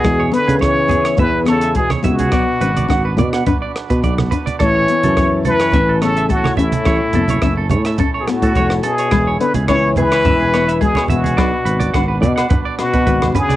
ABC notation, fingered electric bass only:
X:1
M:4/4
L:1/16
Q:1/4=106
K:A
V:1 name="Fingered electric bass" clef=bass
E,,2 z C,4- C, E,,6 C,,2 | B,,, z G,,,2 G,,,2 B,,2 z3 B,, B,,,2 z2 | A,,,2 z F,,4- F,, A,,,6 A,,, z | A,,, z F,,,2 F,,,2 A,,2 z3 A,, =F,,,2 z2 |
E,,,2 z C,,4- C,, E,,,6 E,,,2 | B,,, z G,,,2 G,,,2 B,,2 z3 B,, G,,,2 z2 |]